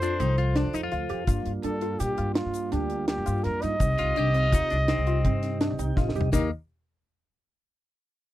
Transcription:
0.00 0.18 F2 medium
0.00 1.24 F3 medium
0.00 0.20 D4 medium
0.00 1.24 F4 medium
0.00 0.14 F4 medium
0.00 1.25 A4 medium
0.00 0.93 C5 loud
0.00 1.25 C5 medium
0.00 closed hi-hat medium
0.00 shaker soft
0.20 0.62 C2 loud
0.20 0.44 C4 medium
0.20 0.38 D#4 medium
0.20 closed hi-hat medium
0.20 shaker soft
0.38 0.56 F4 medium
0.38 closed hi-hat medium
0.56 0.74 D4 medium
0.56 0.68 D4 medium
0.56 snare loud
0.56 closed hi-hat medium
0.65 0.73 F2 medium
0.73 0.91 F2 medium
0.73 0.86 D#4 medium
0.73 0.83 D#4 medium
0.73 closed hi-hat medium
0.73 shaker soft
0.83 1.51 F4 medium
0.92 1.09 D2 loud
0.92 1.04 F4 medium
0.92 closed hi-hat medium
1.09 1.27 F2 medium
1.09 1.22 G4 medium
1.09 closed hi-hat medium
1.27 1.45 G2 loud
1.27 3.76 G3 medium
1.27 3.77 A#3 medium
1.27 3.77 D4 medium
1.27 1.52 F4 medium
1.27 3.77 F4 medium
1.27 kick loud
1.27 closed hi-hat medium
1.27 shaker medium
1.46 1.63 G2 medium
1.46 closed hi-hat medium
1.63 1.98 G2 medium
1.63 1.76 D4 medium
1.63 2.01 A4 medium
1.63 closed hi-hat medium
1.63 shaker soft
1.81 1.94 F4 medium
1.81 closed hi-hat medium
2.00 2.09 A#2 medium
2.00 2.34 G4 medium
2.00 2.12 G4 medium
2.00 snare soft
2.00 closed hi-hat medium
2.00 shaker medium
2.18 2.44 G2 medium
2.18 2.43 F4 medium
2.18 closed hi-hat medium
2.35 2.74 F4 medium
2.35 snare loud
2.35 closed hi-hat medium
2.46 2.71 G2 medium
2.54 closed hi-hat medium
2.54 shaker soft
2.72 3.15 D2 loud
2.72 2.97 D4 medium
2.72 3.07 G4 medium
2.72 snare soft
2.72 closed hi-hat medium
2.72 shaker soft
2.90 closed hi-hat medium
3.08 3.45 G4 medium
3.08 snare loud
3.08 closed hi-hat medium
3.18 3.26 G2 medium
3.26 3.44 G2 medium
3.26 3.51 F4 medium
3.26 closed hi-hat medium
3.26 shaker soft
3.44 3.62 F2 loud
3.44 3.63 A#4 loud
3.44 snare soft
3.44 closed hi-hat medium
3.62 3.80 G2 medium
3.62 3.87 D#4 medium
3.62 5.97 D#5 loud
3.62 snare soft
3.62 closed hi-hat medium
3.62 shaker soft
3.80 3.98 C2 loud
3.80 6.29 C3 medium
3.80 6.29 C4 medium
3.80 6.29 D#4 medium
3.80 6.30 G4 medium
3.80 kick loud
3.80 closed hi-hat medium
3.80 shaker medium
3.98 4.16 C2 medium
3.98 4.17 F4 loud
3.98 snare soft
3.98 closed hi-hat medium
4.16 4.51 C2 medium
4.16 4.29 D4 medium
4.16 4.36 G4 loud
4.16 closed hi-hat medium
4.34 4.47 C4 medium
4.34 4.54 F4 medium
4.34 closed hi-hat medium
4.52 4.61 D#2 medium
4.52 4.71 D#4 medium
4.52 4.77 F4 medium
4.52 kick loud
4.52 closed hi-hat medium
4.52 shaker medium
4.70 4.97 C2 medium
4.70 4.76 D4 medium
4.70 closed hi-hat medium
4.70 shaker soft
4.88 5.57 C4 medium
4.88 5.01 D#4 medium
4.88 snare loud
4.88 closed hi-hat medium
4.88 shaker soft
4.98 5.24 C2 medium
5.07 5.19 F4 medium
5.07 closed hi-hat medium
5.25 5.67 G2 loud
5.25 5.50 C4 medium
5.25 kick loud
5.25 closed hi-hat medium
5.43 snare soft
5.43 closed hi-hat medium
5.61 5.73 D4 medium
5.61 snare loud
5.61 closed hi-hat medium
5.70 5.79 C2 medium
5.79 5.96 C2 medium
5.79 5.92 D#4 medium
5.79 5.96 G5 medium
5.79 closed hi-hat medium
5.79 shaker soft
5.96 6.14 A1 loud
5.96 6.10 F4 medium
5.96 6.30 D#5 medium
5.96 kick loud
5.96 snare medium
5.96 shaker soft
6.09 snare medium
6.15 6.32 C2 medium
6.15 6.28 G4 medium
6.15 shaker soft
6.21 floor tom loud
6.32 6.50 D#2 medium
6.32 6.50 D#3 medium
6.32 6.50 A#3 medium
6.32 6.50 D#4 medium
6.32 6.50 G4 medium
6.32 6.50 A#4 medium
6.32 6.51 D#5 medium
6.32 kick loud
6.32 snare medium
6.32 crash medium
6.32 shaker medium

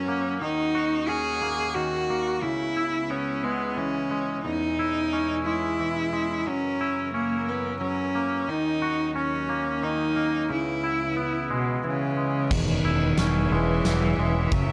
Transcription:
0.00 0.39 F#2 soft
0.00 0.37 E3 soft
0.00 0.41 F#3 soft
0.00 0.41 C#4 medium
0.00 0.45 C#4 soft
0.00 0.41 E4 soft
0.00 2.39 F#4 medium
0.00 0.39 A#4 soft
0.08 0.41 A#3 soft
0.41 2.41 D#2 soft
0.41 2.41 D#3 soft
0.41 1.75 D#3 soft
0.41 2.41 C#4 soft
0.41 1.09 D#4 medium
0.75 2.43 F#4 soft
1.08 3.10 C#4 soft
1.08 1.76 G#4 medium
1.42 2.09 A#3 soft
1.75 2.43 D#3 soft
1.75 2.44 F#4 medium
2.10 2.43 A#3 soft
2.42 4.43 C#2 soft
2.42 4.11 C#3 soft
2.42 4.43 C#3 soft
2.42 4.43 B3 soft
2.42 3.11 E4 medium
2.42 4.43 E4 medium
2.77 4.79 E4 soft
3.10 4.45 B3 soft
3.10 3.46 C#4 medium
3.44 4.10 G#3 soft
3.44 3.79 B3 medium
3.77 5.80 E3 soft
3.77 4.45 C#4 medium
4.11 4.45 G#3 soft
4.43 6.44 E2 soft
4.43 6.13 E2 soft
4.43 6.44 B2 soft
4.43 6.44 G#3 soft
4.43 6.44 C#4 medium
4.43 5.42 D#4 medium
4.79 6.47 E4 soft
5.13 7.14 C#4 soft
5.46 6.12 G#3 soft
5.46 6.49 E4 medium
5.80 6.47 E3 soft
6.13 6.47 G#3 soft
6.45 8.46 F#2 medium
6.45 8.46 C#3 soft
6.45 8.46 E3 soft
6.45 7.80 F#3 soft
6.45 7.14 C#4 medium
6.45 8.46 A#4 medium
6.81 8.49 E4 soft
7.14 7.50 A#3 medium
7.14 8.51 C#4 soft
7.48 7.81 B3 soft
7.81 8.48 F#3 soft
7.81 8.50 C#4 medium
8.15 8.49 A#3 soft
8.48 10.48 D#2 medium
8.48 10.48 D#3 medium
8.48 9.82 D#3 soft
8.48 10.48 F#3 soft
8.48 10.48 C#4 medium
8.48 9.16 D#4 medium
8.82 10.50 F#4 medium
9.15 11.16 C#4 soft
9.15 9.85 C#4 medium
9.49 10.15 A#3 soft
9.83 10.50 D#3 soft
9.83 10.50 D#4 medium
10.16 10.50 A#3 soft
10.49 12.49 C#2 medium
10.49 12.49 C#3 soft
10.49 12.18 C#3 soft
10.49 12.50 E3 soft
10.49 12.49 B3 medium
10.49 11.48 E4 medium
10.84 12.52 E4 soft
11.17 12.51 B3 soft
11.50 11.83 B2 medium
11.50 12.16 G#3 soft
11.84 12.55 C#3 medium
11.84 12.51 E3 soft
12.17 12.51 G#3 soft
12.50 12.81 E1 medium
12.50 14.19 E2 medium
12.50 14.72 C#4 medium
12.50 14.51 G#4 medium
12.50 14.51 B4 medium
12.50 14.72 E5 medium
12.50 kick loud
12.50 crash medium
12.54 13.55 D#3 medium
12.84 13.15 E1 medium
12.84 14.53 E4 medium
13.18 13.48 E1 medium
13.18 14.72 C#4 medium
13.18 snare medium
13.18 ride medium
13.51 13.82 E1 medium
13.51 14.55 E3 medium
13.51 14.18 G#3 medium
13.85 14.15 E1 medium
13.85 14.52 E3 medium
13.85 snare medium
13.85 ride medium
14.18 14.49 E1 medium
14.18 14.53 G#3 medium
14.52 14.72 F#1 medium
14.52 14.72 C#3 medium
14.52 14.72 F#3 medium
14.52 14.72 F#4 medium
14.52 14.72 A#4 medium
14.52 kick loud
14.52 ride medium

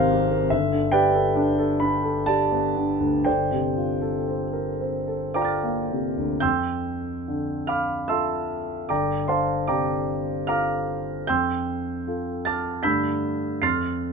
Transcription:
0.00 0.48 G#1 medium
0.00 0.23 C3 soft
0.00 0.30 A#4 medium
0.00 0.47 C5 medium
0.00 0.50 F5 medium
0.11 0.43 G4 soft
0.31 0.51 A#4 medium
0.50 3.22 G1 medium
0.50 0.91 E5 medium
0.72 1.05 D3 soft
0.92 1.27 G4 medium
0.92 1.77 B4 medium
0.92 1.77 D5 medium
0.92 1.80 G5 medium
1.14 1.49 A4 medium
1.36 1.71 D4 medium
1.59 1.95 A4 medium
1.80 2.18 D4 soft
1.80 2.27 B5 medium
2.04 2.41 A4 soft
2.26 2.65 G4 soft
2.26 3.21 D5 medium
2.26 3.25 A5 medium
2.52 2.90 B3 soft
2.76 3.15 D3 soft
3.00 3.25 D2 soft
3.25 6.39 G1 soft
3.25 5.34 C5 medium
3.25 5.34 D5 soft
3.25 5.34 G5 medium
3.52 3.92 C3 soft
3.77 4.17 F4 soft
4.01 4.43 A4 soft
4.28 4.70 C4 soft
4.53 4.97 A#4 soft
4.81 5.25 C4 soft
5.08 5.51 A4 soft
5.34 5.80 F4 soft
5.34 6.39 C5 soft
5.34 6.38 D5 soft
5.34 6.38 G5 soft
5.34 6.42 D6 medium
5.38 6.40 A#5 soft
5.38 6.42 F6 soft
5.45 6.43 A6 soft
5.63 6.08 A#3 soft
5.92 6.33 C3 soft
6.18 6.42 D2 soft
6.40 8.85 F2 soft
6.40 7.64 G5 medium
6.40 7.64 C6 soft
6.40 7.64 E6 medium
6.40 7.67 G6 medium
7.28 8.58 D3 soft
7.67 8.06 F5 soft
7.67 8.06 B5 soft
7.67 8.06 D6 soft
7.67 8.08 F6 medium
8.08 8.86 F4 soft
8.08 8.86 A4 soft
8.08 8.86 E5 soft
8.08 8.86 A5 medium
8.08 8.86 C6 soft
8.08 8.89 E6 medium
8.89 11.24 G1 soft
8.89 9.26 D5 soft
8.89 9.26 G5 soft
8.89 9.26 A#5 soft
8.89 9.29 D6 medium
9.28 9.66 C5 soft
9.28 9.66 F5 soft
9.28 9.65 A5 soft
9.28 9.68 C6 medium
9.67 10.96 C3 soft
9.67 10.44 D5 soft
9.67 10.44 G5 soft
9.67 10.44 A#5 soft
9.67 10.47 D6 medium
10.47 11.24 F4 soft
10.47 11.24 A4 soft
10.47 11.24 F5 soft
10.47 11.24 A#5 medium
10.47 11.24 D6 medium
10.47 11.28 F6 medium
11.27 12.81 F2 soft
11.27 12.42 G5 medium
11.27 12.43 C6 medium
11.27 12.42 E6 medium
11.27 12.46 G6 medium
12.07 12.81 F4 soft
12.07 12.81 A4 soft
12.45 12.82 A5 medium
12.45 12.82 D6 soft
12.45 12.82 F6 soft
12.45 12.84 A6 medium
12.83 13.61 G2 soft
12.83 13.59 D3 soft
12.83 13.59 A3 soft
12.83 13.60 D4 soft
12.83 12.85 A4 soft
12.83 13.60 A4 soft
12.83 13.59 B5 medium
12.83 13.59 E6 medium
12.83 13.59 G6 medium
12.83 13.63 B6 medium
13.62 14.13 F2 soft
13.62 14.13 C6 medium
13.62 14.13 F6 medium
13.62 14.13 A6 medium
13.62 14.13 C7 medium

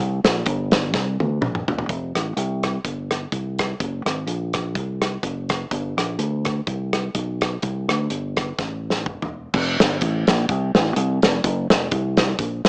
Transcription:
0.00 0.21 C2 loud
0.24 0.42 A#1 medium
0.24 snare loud
0.24 closed hi-hat medium
0.46 0.94 G1 medium
0.46 kick loud
0.46 closed hi-hat medium
0.72 kick medium
0.72 snare loud
0.72 closed hi-hat medium
0.94 1.16 C2 medium
0.94 kick loud
0.94 snare medium
1.20 1.38 D2 medium
1.20 high tom medium
1.41 1.64 A#1 medium
1.41 mid tom medium
1.55 mid tom medium
1.68 1.86 E1 medium
1.68 floor tom loud
1.79 floor tom medium
1.89 2.11 F1 medium
1.89 kick medium
1.89 closed hi-hat medium
2.15 2.33 A1 medium
2.15 cross-stick medium
2.15 closed hi-hat medium
2.36 2.77 C2 medium
2.36 closed hi-hat medium
2.63 kick medium
2.63 cross-stick medium
2.63 closed hi-hat medium
2.84 3.25 G1 medium
2.84 kick medium
2.84 closed hi-hat medium
3.11 cross-stick medium
3.11 closed hi-hat medium
3.32 3.73 C2 medium
3.32 kick medium
3.32 closed hi-hat medium
3.58 kick medium
3.58 cross-stick loud
3.58 closed hi-hat medium
3.80 4.02 F#1 medium
3.80 kick loud
3.80 closed hi-hat medium
4.05 4.24 G#1 medium
4.05 cross-stick loud
4.05 closed hi-hat medium
4.26 4.75 A#1 medium
4.26 closed hi-hat medium
4.53 kick medium
4.53 cross-stick medium
4.53 closed hi-hat medium
4.75 5.16 C2 medium
4.75 kick medium
4.75 closed hi-hat medium
5.02 cross-stick medium
5.02 closed hi-hat medium
5.23 5.64 F#1 medium
5.23 kick medium
5.23 closed hi-hat medium
5.49 kick medium
5.49 cross-stick loud
5.49 closed hi-hat medium
5.71 5.94 G1 medium
5.71 kick loud
5.71 closed hi-hat medium
5.97 6.16 A#1 medium
5.97 cross-stick medium
5.97 closed hi-hat medium
6.19 6.60 D2 medium
6.19 closed hi-hat medium
6.45 kick medium
6.45 cross-stick medium
6.45 closed hi-hat medium
6.67 7.08 C2 medium
6.67 kick loud
6.67 closed hi-hat medium
6.93 cross-stick medium
6.93 closed hi-hat medium
7.15 7.56 B1 medium
7.15 kick medium
7.15 closed hi-hat medium
7.41 kick medium
7.41 cross-stick loud
7.41 closed hi-hat medium
7.62 7.85 C2 medium
7.62 kick medium
7.62 closed hi-hat medium
7.88 8.07 D2 medium
7.88 cross-stick loud
7.88 closed hi-hat medium
8.10 8.51 G1 medium
8.10 closed hi-hat medium
8.37 kick medium
8.37 cross-stick medium
8.37 closed hi-hat medium
8.58 9.06 A1 medium
8.58 kick loud
8.58 snare soft
8.90 snare medium
9.06 9.47 E1 medium
9.06 kick medium
9.06 mid tom medium
9.22 floor tom medium
9.54 9.76 F1 loud
9.54 kick loud
9.54 crash loud
9.80 9.99 G1 medium
9.80 snare loud
9.80 closed hi-hat medium
10.01 10.24 A1 loud
10.01 kick loud
10.01 closed hi-hat medium
10.27 10.46 A#1 medium
10.27 kick loud
10.27 snare loud
10.27 closed hi-hat medium
10.49 10.71 C2 medium
10.49 kick loud
10.49 closed hi-hat medium
10.75 10.93 A1 medium
10.75 snare loud
10.75 closed hi-hat medium
10.96 11.19 C2 loud
10.96 closed hi-hat loud
11.22 11.41 F1 loud
11.22 snare loud
11.22 closed hi-hat medium
11.44 11.66 F#1 loud
11.44 kick loud
11.44 closed hi-hat loud
11.70 11.88 F1 medium
11.70 snare loud
11.70 closed hi-hat loud
11.91 12.32 C2 medium
11.91 kick loud
11.91 closed hi-hat medium
12.17 kick medium
12.17 snare loud
12.17 closed hi-hat medium
12.39 12.61 A#1 medium
12.39 kick loud
12.39 closed hi-hat medium
12.65 12.69 G#1 medium
12.65 snare loud
12.65 closed hi-hat medium

